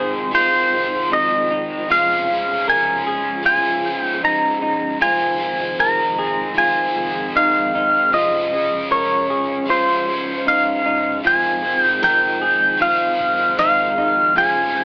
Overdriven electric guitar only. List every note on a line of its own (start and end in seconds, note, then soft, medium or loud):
0.00 0.30 D#3 soft
0.00 0.35 G#3 soft
0.00 0.38 C4 soft
0.00 0.41 C5 soft
0.31 1.89 D#3 medium
0.35 1.91 G#3 soft
0.35 1.92 C4 medium
0.41 1.93 C5 medium
1.89 2.29 F2 medium
1.89 2.29 F3 medium
1.89 2.29 G#3 medium
1.89 2.30 C#4 medium
1.89 2.28 G#4 medium
1.89 2.26 C5 medium
2.27 3.46 C#4 soft
2.27 3.50 G#4 soft
2.27 3.50 C5 soft
2.32 3.42 G#3 soft
3.43 5.02 G#3 medium
3.47 5.02 C#4 medium
3.47 5.03 G#4 medium
3.53 5.04 C5 medium
5.01 5.40 F2 medium
5.01 5.41 D#3 medium
5.01 5.41 F3 medium
5.01 5.41 G#3 medium
5.01 5.40 C4 medium
5.01 5.38 C5 medium
5.40 6.58 G#3 soft
5.40 6.61 C4 soft
5.40 6.64 C5 medium
5.44 6.53 D#3 soft
6.54 8.12 D#3 medium
6.58 8.14 G#3 medium
6.58 8.14 C4 medium
6.64 8.15 C5 medium
8.12 8.52 F2 medium
8.12 8.52 F3 medium
8.12 8.53 G#3 medium
8.12 8.53 C#4 medium
8.12 8.51 G#4 medium
8.12 8.53 C5 medium
8.53 9.65 G#3 soft
8.53 9.68 C#4 soft
8.53 9.73 G#4 soft
9.66 11.25 G#3 medium
9.70 11.25 C#4 medium
9.70 11.26 G#4 medium
9.76 11.27 C5 medium
11.23 11.63 F2 medium
11.23 11.64 D#3 medium
11.23 11.64 F3 medium
11.23 11.64 G#3 medium
11.23 11.63 C4 medium
11.23 11.61 C5 medium
11.63 12.81 G#3 soft
11.63 12.85 C4 soft
11.63 12.88 C5 soft
11.67 12.76 D#3 soft
12.78 14.35 D#3 medium
12.82 14.37 G#3 medium
12.82 14.38 C4 medium
12.88 14.38 C5 medium
14.36 14.75 F2 medium
14.36 14.76 F3 medium
14.36 14.76 G#3 medium
14.36 14.76 C#4 medium
14.36 14.75 G#4 medium
14.36 14.74 C5 medium
14.75 14.84 C#4 soft
14.75 14.84 G#4 soft
14.75 14.84 C5 soft
14.79 14.84 G#3 soft